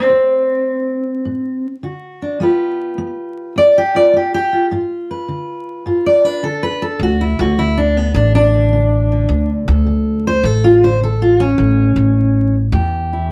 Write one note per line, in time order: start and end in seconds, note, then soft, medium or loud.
0.00 1.66 C4 loud
0.10 0.64 D2 medium
1.25 1.80 A2 medium
1.83 2.37 D3 medium
1.83 2.39 F#4 soft
2.22 2.41 D4 soft
2.40 2.94 G3 medium
2.40 2.98 B3 medium
2.40 3.93 F4 soft
2.40 3.76 G4 medium
2.40 3.57 B4 soft
2.98 3.52 B3 medium
3.56 4.10 D2 medium
3.56 3.76 D5 loud
3.78 3.96 G4 loud
3.95 4.52 F4 soft
3.95 4.14 D5 loud
4.13 4.67 B3 medium
4.13 4.33 G4 medium
4.34 4.66 G4 loud
4.53 4.69 F4 medium
4.71 5.25 G#2 medium
4.71 5.85 F4 medium
5.11 6.06 B4 medium
5.28 5.82 D3 medium
5.86 6.39 G#2 medium
5.86 6.43 F4 medium
6.06 6.25 D5 loud
6.24 7.24 D4 soft
6.24 6.44 B4 loud
6.43 6.97 D3 medium
6.43 6.63 A4 loud
6.63 6.82 B4 loud
6.82 7.01 A4 loud
6.99 7.36 D2 loud
6.99 7.54 D2 medium
6.99 7.21 F#4 loud
7.21 7.39 E4 medium
7.39 8.11 D2 loud
7.39 7.58 D3 medium
7.39 7.59 F#4 medium
7.58 8.12 D3 medium
7.58 7.77 E4 loud
7.78 7.97 D4 medium
7.97 8.16 B3 loud
8.14 9.26 A1 loud
8.14 8.69 A2 medium
8.14 8.34 D4 loud
8.35 9.49 D4 loud
8.54 8.72 D3 soft
8.73 9.11 D3 medium
9.12 9.85 D3 medium
9.29 9.66 D2 loud
9.29 9.83 D2 medium
9.68 10.40 D2 loud
9.68 10.27 A4 medium
9.87 10.40 D3 medium
10.27 10.45 C5 loud
10.43 11.55 A1 loud
10.43 10.98 A2 medium
10.43 10.64 A4 medium
10.64 10.83 F4 loud
10.83 11.00 D3 soft
10.83 11.02 C5 loud
11.01 11.55 D3 medium
11.01 11.22 A4 medium
11.22 11.40 F4 loud
11.40 12.54 C#4 loud
11.58 11.95 A1 loud
11.58 12.13 A2 medium
11.96 12.69 A1 loud
12.72 13.32 E2 loud
12.72 13.27 A2 medium
12.72 13.30 G4 medium
13.13 13.32 E4 soft